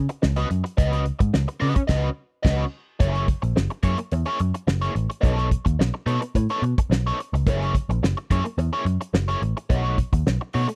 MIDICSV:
0, 0, Header, 1, 5, 480
1, 0, Start_track
1, 0, Tempo, 557103
1, 676, Time_signature, 4, 2, 24, 8
1, 9266, End_track
2, 0, Start_track
2, 0, Title_t, "Overdriven electric guitar"
2, 0, Program_c, 0, 29
2, 314, Note_on_c, 0, 75, 78
2, 317, Note_on_c, 0, 71, 71
2, 321, Note_on_c, 0, 66, 68
2, 322, Note_on_c, 0, 61, 62
2, 418, Note_off_c, 0, 61, 0
2, 419, Note_off_c, 0, 66, 0
2, 421, Note_off_c, 0, 71, 0
2, 421, Note_off_c, 0, 75, 0
2, 665, Note_on_c, 0, 61, 70
2, 672, Note_on_c, 0, 66, 73
2, 674, Note_on_c, 0, 75, 87
2, 676, Note_on_c, 0, 71, 75
2, 892, Note_off_c, 0, 61, 0
2, 895, Note_off_c, 0, 66, 0
2, 896, Note_off_c, 0, 75, 0
2, 897, Note_off_c, 0, 71, 0
2, 1377, Note_on_c, 0, 61, 78
2, 1382, Note_on_c, 0, 66, 74
2, 1382, Note_on_c, 0, 71, 76
2, 1389, Note_on_c, 0, 75, 77
2, 1498, Note_off_c, 0, 75, 0
2, 1503, Note_off_c, 0, 71, 0
2, 1504, Note_off_c, 0, 66, 0
2, 1561, Note_off_c, 0, 61, 0
2, 1616, Note_on_c, 0, 75, 103
2, 1622, Note_on_c, 0, 71, 108
2, 1626, Note_on_c, 0, 66, 107
2, 1629, Note_on_c, 0, 61, 117
2, 1788, Note_off_c, 0, 75, 0
2, 1792, Note_off_c, 0, 71, 0
2, 1794, Note_off_c, 0, 66, 0
2, 1795, Note_off_c, 0, 61, 0
2, 2093, Note_on_c, 0, 75, 109
2, 2097, Note_on_c, 0, 71, 91
2, 2099, Note_on_c, 0, 66, 107
2, 2103, Note_on_c, 0, 61, 107
2, 2266, Note_off_c, 0, 75, 0
2, 2268, Note_off_c, 0, 71, 0
2, 2270, Note_off_c, 0, 66, 0
2, 2271, Note_off_c, 0, 61, 0
2, 2581, Note_on_c, 0, 58, 75
2, 2581, Note_on_c, 0, 64, 86
2, 2588, Note_on_c, 0, 73, 88
2, 2589, Note_on_c, 0, 68, 81
2, 2807, Note_off_c, 0, 58, 0
2, 2807, Note_off_c, 0, 64, 0
2, 2810, Note_off_c, 0, 73, 0
2, 2811, Note_off_c, 0, 68, 0
2, 3299, Note_on_c, 0, 58, 83
2, 3304, Note_on_c, 0, 64, 81
2, 3308, Note_on_c, 0, 68, 74
2, 3311, Note_on_c, 0, 73, 84
2, 3426, Note_off_c, 0, 68, 0
2, 3426, Note_off_c, 0, 73, 0
2, 3429, Note_off_c, 0, 58, 0
2, 3431, Note_off_c, 0, 64, 0
2, 3669, Note_on_c, 0, 73, 93
2, 3674, Note_on_c, 0, 68, 74
2, 3680, Note_on_c, 0, 64, 76
2, 3684, Note_on_c, 0, 58, 69
2, 3782, Note_off_c, 0, 64, 0
2, 3783, Note_off_c, 0, 58, 0
2, 3783, Note_off_c, 0, 73, 0
2, 3784, Note_off_c, 0, 68, 0
2, 4149, Note_on_c, 0, 73, 77
2, 4151, Note_on_c, 0, 64, 72
2, 4152, Note_on_c, 0, 68, 71
2, 4156, Note_on_c, 0, 58, 57
2, 4252, Note_off_c, 0, 64, 0
2, 4253, Note_off_c, 0, 58, 0
2, 4255, Note_off_c, 0, 68, 0
2, 4256, Note_off_c, 0, 73, 0
2, 4488, Note_on_c, 0, 59, 68
2, 4493, Note_on_c, 0, 63, 76
2, 4501, Note_on_c, 0, 69, 84
2, 4502, Note_on_c, 0, 73, 75
2, 4720, Note_off_c, 0, 59, 0
2, 4723, Note_off_c, 0, 63, 0
2, 4727, Note_off_c, 0, 69, 0
2, 4727, Note_off_c, 0, 73, 0
2, 5222, Note_on_c, 0, 59, 73
2, 5224, Note_on_c, 0, 63, 76
2, 5229, Note_on_c, 0, 69, 80
2, 5233, Note_on_c, 0, 73, 78
2, 5347, Note_off_c, 0, 73, 0
2, 5350, Note_off_c, 0, 69, 0
2, 5351, Note_off_c, 0, 59, 0
2, 5352, Note_off_c, 0, 63, 0
2, 5602, Note_on_c, 0, 73, 82
2, 5606, Note_on_c, 0, 69, 82
2, 5608, Note_on_c, 0, 63, 71
2, 5610, Note_on_c, 0, 59, 70
2, 5704, Note_off_c, 0, 59, 0
2, 5707, Note_off_c, 0, 63, 0
2, 5711, Note_off_c, 0, 69, 0
2, 5711, Note_off_c, 0, 73, 0
2, 6088, Note_on_c, 0, 73, 80
2, 6092, Note_on_c, 0, 63, 77
2, 6093, Note_on_c, 0, 69, 73
2, 6098, Note_on_c, 0, 59, 65
2, 6190, Note_off_c, 0, 59, 0
2, 6192, Note_off_c, 0, 63, 0
2, 6195, Note_off_c, 0, 73, 0
2, 6197, Note_off_c, 0, 69, 0
2, 6440, Note_on_c, 0, 58, 79
2, 6447, Note_on_c, 0, 64, 76
2, 6452, Note_on_c, 0, 68, 77
2, 6454, Note_on_c, 0, 73, 76
2, 6659, Note_off_c, 0, 58, 0
2, 6662, Note_off_c, 0, 64, 0
2, 6665, Note_off_c, 0, 68, 0
2, 6665, Note_off_c, 0, 73, 0
2, 7156, Note_on_c, 0, 58, 72
2, 7158, Note_on_c, 0, 64, 83
2, 7163, Note_on_c, 0, 68, 79
2, 7168, Note_on_c, 0, 73, 87
2, 7271, Note_off_c, 0, 73, 0
2, 7278, Note_off_c, 0, 64, 0
2, 7278, Note_off_c, 0, 68, 0
2, 7281, Note_off_c, 0, 58, 0
2, 7519, Note_on_c, 0, 68, 84
2, 7521, Note_on_c, 0, 73, 82
2, 7526, Note_on_c, 0, 64, 77
2, 7527, Note_on_c, 0, 58, 66
2, 7619, Note_off_c, 0, 58, 0
2, 7623, Note_off_c, 0, 68, 0
2, 7626, Note_off_c, 0, 64, 0
2, 7627, Note_off_c, 0, 73, 0
2, 7997, Note_on_c, 0, 73, 75
2, 8001, Note_on_c, 0, 68, 76
2, 8008, Note_on_c, 0, 58, 65
2, 8008, Note_on_c, 0, 64, 67
2, 8105, Note_off_c, 0, 58, 0
2, 8109, Note_off_c, 0, 64, 0
2, 8112, Note_off_c, 0, 73, 0
2, 8114, Note_off_c, 0, 68, 0
2, 8353, Note_on_c, 0, 57, 87
2, 8360, Note_on_c, 0, 63, 89
2, 8361, Note_on_c, 0, 66, 87
2, 8367, Note_on_c, 0, 73, 83
2, 8578, Note_off_c, 0, 57, 0
2, 8582, Note_off_c, 0, 63, 0
2, 8582, Note_off_c, 0, 66, 0
2, 8586, Note_off_c, 0, 73, 0
2, 9081, Note_on_c, 0, 57, 75
2, 9083, Note_on_c, 0, 63, 76
2, 9084, Note_on_c, 0, 66, 81
2, 9090, Note_on_c, 0, 73, 87
2, 9195, Note_off_c, 0, 73, 0
2, 9199, Note_off_c, 0, 66, 0
2, 9202, Note_off_c, 0, 63, 0
2, 9207, Note_off_c, 0, 57, 0
2, 9266, End_track
3, 0, Start_track
3, 0, Title_t, "Picked electric bass"
3, 0, Program_c, 1, 34
3, 205, Note_on_c, 1, 37, 95
3, 378, Note_off_c, 1, 37, 0
3, 437, Note_on_c, 1, 42, 93
3, 530, Note_off_c, 1, 42, 0
3, 676, Note_on_c, 1, 37, 102
3, 944, Note_off_c, 1, 37, 0
3, 1039, Note_on_c, 1, 44, 83
3, 1123, Note_off_c, 1, 44, 0
3, 1159, Note_on_c, 1, 37, 90
3, 1250, Note_off_c, 1, 37, 0
3, 1397, Note_on_c, 1, 49, 105
3, 1489, Note_off_c, 1, 49, 0
3, 1631, Note_on_c, 1, 37, 110
3, 1797, Note_off_c, 1, 37, 0
3, 2111, Note_on_c, 1, 37, 97
3, 2276, Note_off_c, 1, 37, 0
3, 2590, Note_on_c, 1, 30, 115
3, 2858, Note_off_c, 1, 30, 0
3, 2957, Note_on_c, 1, 34, 88
3, 3039, Note_off_c, 1, 34, 0
3, 3071, Note_on_c, 1, 30, 87
3, 3164, Note_off_c, 1, 30, 0
3, 3305, Note_on_c, 1, 42, 95
3, 3400, Note_off_c, 1, 42, 0
3, 3552, Note_on_c, 1, 40, 107
3, 3644, Note_off_c, 1, 40, 0
3, 3795, Note_on_c, 1, 42, 101
3, 3886, Note_off_c, 1, 42, 0
3, 4027, Note_on_c, 1, 30, 82
3, 4203, Note_off_c, 1, 30, 0
3, 4269, Note_on_c, 1, 33, 93
3, 4362, Note_off_c, 1, 33, 0
3, 4512, Note_on_c, 1, 35, 104
3, 4780, Note_off_c, 1, 35, 0
3, 4876, Note_on_c, 1, 39, 93
3, 4959, Note_off_c, 1, 39, 0
3, 4988, Note_on_c, 1, 35, 86
3, 5082, Note_off_c, 1, 35, 0
3, 5225, Note_on_c, 1, 47, 102
3, 5320, Note_off_c, 1, 47, 0
3, 5472, Note_on_c, 1, 45, 110
3, 5565, Note_off_c, 1, 45, 0
3, 5706, Note_on_c, 1, 47, 91
3, 5801, Note_off_c, 1, 47, 0
3, 5942, Note_on_c, 1, 35, 80
3, 6122, Note_off_c, 1, 35, 0
3, 6317, Note_on_c, 1, 37, 95
3, 6433, Note_on_c, 1, 30, 97
3, 6446, Note_off_c, 1, 37, 0
3, 6703, Note_off_c, 1, 30, 0
3, 6799, Note_on_c, 1, 34, 98
3, 6883, Note_off_c, 1, 34, 0
3, 6915, Note_on_c, 1, 30, 84
3, 7008, Note_off_c, 1, 30, 0
3, 7158, Note_on_c, 1, 42, 98
3, 7250, Note_off_c, 1, 42, 0
3, 7391, Note_on_c, 1, 40, 113
3, 7486, Note_off_c, 1, 40, 0
3, 7628, Note_on_c, 1, 42, 97
3, 7724, Note_off_c, 1, 42, 0
3, 7872, Note_on_c, 1, 30, 79
3, 8050, Note_off_c, 1, 30, 0
3, 8116, Note_on_c, 1, 33, 86
3, 8210, Note_off_c, 1, 33, 0
3, 8359, Note_on_c, 1, 35, 109
3, 8629, Note_off_c, 1, 35, 0
3, 8728, Note_on_c, 1, 39, 90
3, 8811, Note_off_c, 1, 39, 0
3, 8846, Note_on_c, 1, 35, 77
3, 8938, Note_off_c, 1, 35, 0
3, 9089, Note_on_c, 1, 47, 95
3, 9180, Note_off_c, 1, 47, 0
3, 9266, End_track
4, 0, Start_track
4, 0, Title_t, "Muted overdriven electric guitar strokes"
4, 80, Note_on_c, 9, 29, 55
4, 166, Note_off_c, 9, 29, 0
4, 191, Note_on_c, 9, 29, 43
4, 277, Note_off_c, 9, 29, 0
4, 428, Note_on_c, 9, 29, 37
4, 514, Note_off_c, 9, 29, 0
4, 550, Note_on_c, 9, 29, 51
4, 636, Note_off_c, 9, 29, 0
4, 1026, Note_on_c, 9, 29, 56
4, 1112, Note_off_c, 9, 29, 0
4, 1150, Note_on_c, 9, 29, 47
4, 1236, Note_off_c, 9, 29, 0
4, 1275, Note_on_c, 9, 29, 49
4, 1361, Note_off_c, 9, 29, 0
4, 1508, Note_on_c, 9, 29, 52
4, 1594, Note_off_c, 9, 29, 0
4, 2948, Note_on_c, 9, 29, 52
4, 3034, Note_off_c, 9, 29, 0
4, 3066, Note_on_c, 9, 29, 39
4, 3152, Note_off_c, 9, 29, 0
4, 3191, Note_on_c, 9, 29, 42
4, 3277, Note_off_c, 9, 29, 0
4, 3436, Note_on_c, 9, 29, 46
4, 3522, Note_off_c, 9, 29, 0
4, 3550, Note_on_c, 9, 29, 41
4, 3636, Note_off_c, 9, 29, 0
4, 3792, Note_on_c, 9, 29, 39
4, 3878, Note_off_c, 9, 29, 0
4, 3915, Note_on_c, 9, 29, 41
4, 4001, Note_off_c, 9, 29, 0
4, 4027, Note_on_c, 9, 29, 41
4, 4113, Note_off_c, 9, 29, 0
4, 4263, Note_on_c, 9, 29, 38
4, 4349, Note_off_c, 9, 29, 0
4, 4392, Note_on_c, 9, 29, 53
4, 4478, Note_off_c, 9, 29, 0
4, 4866, Note_on_c, 9, 29, 39
4, 4952, Note_off_c, 9, 29, 0
4, 4991, Note_on_c, 9, 29, 39
4, 5077, Note_off_c, 9, 29, 0
4, 5116, Note_on_c, 9, 29, 47
4, 5203, Note_off_c, 9, 29, 0
4, 5357, Note_on_c, 9, 29, 46
4, 5443, Note_off_c, 9, 29, 0
4, 5476, Note_on_c, 9, 29, 43
4, 5562, Note_off_c, 9, 29, 0
4, 5715, Note_on_c, 9, 29, 48
4, 5801, Note_off_c, 9, 29, 0
4, 5844, Note_on_c, 9, 29, 50
4, 5930, Note_off_c, 9, 29, 0
4, 5954, Note_on_c, 9, 29, 49
4, 6040, Note_off_c, 9, 29, 0
4, 6200, Note_on_c, 9, 29, 42
4, 6286, Note_off_c, 9, 29, 0
4, 6323, Note_on_c, 9, 29, 56
4, 6409, Note_off_c, 9, 29, 0
4, 6805, Note_on_c, 9, 29, 38
4, 6891, Note_off_c, 9, 29, 0
4, 6918, Note_on_c, 9, 29, 52
4, 7005, Note_off_c, 9, 29, 0
4, 7041, Note_on_c, 9, 29, 44
4, 7127, Note_off_c, 9, 29, 0
4, 7281, Note_on_c, 9, 29, 50
4, 7367, Note_off_c, 9, 29, 0
4, 7393, Note_on_c, 9, 29, 54
4, 7479, Note_off_c, 9, 29, 0
4, 7629, Note_on_c, 9, 29, 39
4, 7715, Note_off_c, 9, 29, 0
4, 7760, Note_on_c, 9, 29, 52
4, 7847, Note_off_c, 9, 29, 0
4, 7871, Note_on_c, 9, 29, 47
4, 7957, Note_off_c, 9, 29, 0
4, 8116, Note_on_c, 9, 29, 41
4, 8202, Note_off_c, 9, 29, 0
4, 8244, Note_on_c, 9, 29, 58
4, 8330, Note_off_c, 9, 29, 0
4, 8728, Note_on_c, 9, 29, 42
4, 8814, Note_off_c, 9, 29, 0
4, 8845, Note_on_c, 9, 29, 48
4, 8931, Note_off_c, 9, 29, 0
4, 8970, Note_on_c, 9, 29, 45
4, 9056, Note_off_c, 9, 29, 0
4, 9205, Note_on_c, 9, 29, 47
4, 9266, Note_off_c, 9, 29, 0
4, 9266, End_track
5, 0, Start_track
5, 0, Title_t, "Drums"
5, 78, Note_on_c, 9, 42, 64
5, 164, Note_off_c, 9, 42, 0
5, 198, Note_on_c, 9, 38, 113
5, 284, Note_off_c, 9, 38, 0
5, 312, Note_on_c, 9, 42, 59
5, 326, Note_on_c, 9, 38, 33
5, 398, Note_off_c, 9, 42, 0
5, 412, Note_off_c, 9, 38, 0
5, 437, Note_on_c, 9, 42, 89
5, 523, Note_off_c, 9, 42, 0
5, 567, Note_on_c, 9, 42, 57
5, 653, Note_off_c, 9, 42, 0
5, 674, Note_on_c, 9, 36, 116
5, 675, Note_on_c, 9, 42, 90
5, 760, Note_off_c, 9, 36, 0
5, 761, Note_off_c, 9, 42, 0
5, 801, Note_on_c, 9, 42, 56
5, 887, Note_off_c, 9, 42, 0
5, 910, Note_on_c, 9, 42, 80
5, 997, Note_off_c, 9, 42, 0
5, 1037, Note_on_c, 9, 36, 99
5, 1037, Note_on_c, 9, 42, 61
5, 1123, Note_off_c, 9, 36, 0
5, 1123, Note_off_c, 9, 42, 0
5, 1154, Note_on_c, 9, 38, 114
5, 1240, Note_off_c, 9, 38, 0
5, 1278, Note_on_c, 9, 42, 50
5, 1365, Note_off_c, 9, 42, 0
5, 1391, Note_on_c, 9, 46, 74
5, 1478, Note_off_c, 9, 46, 0
5, 1514, Note_on_c, 9, 42, 65
5, 1517, Note_on_c, 9, 36, 100
5, 1600, Note_off_c, 9, 42, 0
5, 1603, Note_off_c, 9, 36, 0
5, 1624, Note_on_c, 9, 49, 84
5, 1629, Note_on_c, 9, 36, 96
5, 1629, Note_on_c, 9, 38, 101
5, 1710, Note_off_c, 9, 49, 0
5, 1715, Note_off_c, 9, 36, 0
5, 1716, Note_off_c, 9, 38, 0
5, 2108, Note_on_c, 9, 36, 109
5, 2113, Note_on_c, 9, 49, 84
5, 2118, Note_on_c, 9, 38, 106
5, 2194, Note_off_c, 9, 36, 0
5, 2199, Note_off_c, 9, 49, 0
5, 2204, Note_off_c, 9, 38, 0
5, 2586, Note_on_c, 9, 42, 76
5, 2587, Note_on_c, 9, 36, 109
5, 2672, Note_off_c, 9, 42, 0
5, 2673, Note_off_c, 9, 36, 0
5, 2716, Note_on_c, 9, 42, 35
5, 2802, Note_off_c, 9, 42, 0
5, 2827, Note_on_c, 9, 36, 104
5, 2828, Note_on_c, 9, 42, 72
5, 2913, Note_off_c, 9, 36, 0
5, 2914, Note_off_c, 9, 42, 0
5, 2960, Note_on_c, 9, 42, 55
5, 3046, Note_off_c, 9, 42, 0
5, 3075, Note_on_c, 9, 38, 110
5, 3161, Note_off_c, 9, 38, 0
5, 3190, Note_on_c, 9, 42, 35
5, 3276, Note_off_c, 9, 42, 0
5, 3299, Note_on_c, 9, 42, 67
5, 3303, Note_on_c, 9, 36, 78
5, 3385, Note_off_c, 9, 42, 0
5, 3389, Note_off_c, 9, 36, 0
5, 3430, Note_on_c, 9, 42, 66
5, 3516, Note_off_c, 9, 42, 0
5, 3546, Note_on_c, 9, 42, 91
5, 3632, Note_off_c, 9, 42, 0
5, 3664, Note_on_c, 9, 42, 36
5, 3751, Note_off_c, 9, 42, 0
5, 3787, Note_on_c, 9, 42, 65
5, 3873, Note_off_c, 9, 42, 0
5, 3916, Note_on_c, 9, 42, 62
5, 4002, Note_off_c, 9, 42, 0
5, 4033, Note_on_c, 9, 38, 109
5, 4119, Note_off_c, 9, 38, 0
5, 4151, Note_on_c, 9, 42, 36
5, 4165, Note_on_c, 9, 38, 36
5, 4237, Note_off_c, 9, 42, 0
5, 4251, Note_off_c, 9, 38, 0
5, 4274, Note_on_c, 9, 42, 81
5, 4360, Note_off_c, 9, 42, 0
5, 4406, Note_on_c, 9, 42, 58
5, 4492, Note_off_c, 9, 42, 0
5, 4509, Note_on_c, 9, 36, 103
5, 4515, Note_on_c, 9, 42, 83
5, 4595, Note_off_c, 9, 36, 0
5, 4602, Note_off_c, 9, 42, 0
5, 4640, Note_on_c, 9, 42, 35
5, 4726, Note_off_c, 9, 42, 0
5, 4750, Note_on_c, 9, 36, 98
5, 4755, Note_on_c, 9, 42, 67
5, 4837, Note_off_c, 9, 36, 0
5, 4841, Note_off_c, 9, 42, 0
5, 4876, Note_on_c, 9, 36, 95
5, 4884, Note_on_c, 9, 42, 58
5, 4962, Note_off_c, 9, 36, 0
5, 4970, Note_off_c, 9, 42, 0
5, 5006, Note_on_c, 9, 38, 109
5, 5092, Note_off_c, 9, 38, 0
5, 5235, Note_on_c, 9, 42, 67
5, 5321, Note_off_c, 9, 42, 0
5, 5359, Note_on_c, 9, 42, 65
5, 5445, Note_off_c, 9, 42, 0
5, 5472, Note_on_c, 9, 36, 72
5, 5475, Note_on_c, 9, 42, 86
5, 5558, Note_off_c, 9, 36, 0
5, 5561, Note_off_c, 9, 42, 0
5, 5594, Note_on_c, 9, 42, 37
5, 5681, Note_off_c, 9, 42, 0
5, 5717, Note_on_c, 9, 42, 64
5, 5803, Note_off_c, 9, 42, 0
5, 5843, Note_on_c, 9, 36, 104
5, 5845, Note_on_c, 9, 42, 58
5, 5929, Note_off_c, 9, 36, 0
5, 5931, Note_off_c, 9, 42, 0
5, 5965, Note_on_c, 9, 38, 123
5, 6051, Note_off_c, 9, 38, 0
5, 6094, Note_on_c, 9, 38, 32
5, 6180, Note_off_c, 9, 38, 0
5, 6206, Note_on_c, 9, 42, 78
5, 6292, Note_off_c, 9, 42, 0
5, 6336, Note_on_c, 9, 42, 57
5, 6422, Note_off_c, 9, 42, 0
5, 6433, Note_on_c, 9, 36, 121
5, 6436, Note_on_c, 9, 42, 80
5, 6519, Note_off_c, 9, 36, 0
5, 6522, Note_off_c, 9, 42, 0
5, 6569, Note_on_c, 9, 42, 34
5, 6655, Note_off_c, 9, 42, 0
5, 6674, Note_on_c, 9, 36, 92
5, 6679, Note_on_c, 9, 42, 80
5, 6760, Note_off_c, 9, 36, 0
5, 6765, Note_off_c, 9, 42, 0
5, 6811, Note_on_c, 9, 42, 53
5, 6897, Note_off_c, 9, 42, 0
5, 6929, Note_on_c, 9, 38, 109
5, 7015, Note_off_c, 9, 38, 0
5, 7043, Note_on_c, 9, 42, 34
5, 7129, Note_off_c, 9, 42, 0
5, 7156, Note_on_c, 9, 36, 84
5, 7158, Note_on_c, 9, 42, 69
5, 7242, Note_off_c, 9, 36, 0
5, 7244, Note_off_c, 9, 42, 0
5, 7284, Note_on_c, 9, 42, 60
5, 7370, Note_off_c, 9, 42, 0
5, 7399, Note_on_c, 9, 42, 78
5, 7485, Note_off_c, 9, 42, 0
5, 7636, Note_on_c, 9, 42, 71
5, 7722, Note_off_c, 9, 42, 0
5, 7765, Note_on_c, 9, 42, 59
5, 7852, Note_off_c, 9, 42, 0
5, 7880, Note_on_c, 9, 38, 122
5, 7966, Note_off_c, 9, 38, 0
5, 7995, Note_on_c, 9, 42, 36
5, 8008, Note_on_c, 9, 38, 36
5, 8081, Note_off_c, 9, 42, 0
5, 8095, Note_off_c, 9, 38, 0
5, 8122, Note_on_c, 9, 42, 78
5, 8208, Note_off_c, 9, 42, 0
5, 8251, Note_on_c, 9, 42, 54
5, 8337, Note_off_c, 9, 42, 0
5, 8357, Note_on_c, 9, 36, 97
5, 8362, Note_on_c, 9, 42, 81
5, 8443, Note_off_c, 9, 36, 0
5, 8449, Note_off_c, 9, 42, 0
5, 8599, Note_on_c, 9, 36, 96
5, 8603, Note_on_c, 9, 42, 70
5, 8685, Note_off_c, 9, 36, 0
5, 8689, Note_off_c, 9, 42, 0
5, 8726, Note_on_c, 9, 36, 100
5, 8730, Note_on_c, 9, 42, 60
5, 8812, Note_off_c, 9, 36, 0
5, 8816, Note_off_c, 9, 42, 0
5, 8847, Note_on_c, 9, 38, 106
5, 8933, Note_off_c, 9, 38, 0
5, 9075, Note_on_c, 9, 46, 69
5, 9161, Note_off_c, 9, 46, 0
5, 9210, Note_on_c, 9, 42, 64
5, 9266, Note_off_c, 9, 42, 0
5, 9266, End_track
0, 0, End_of_file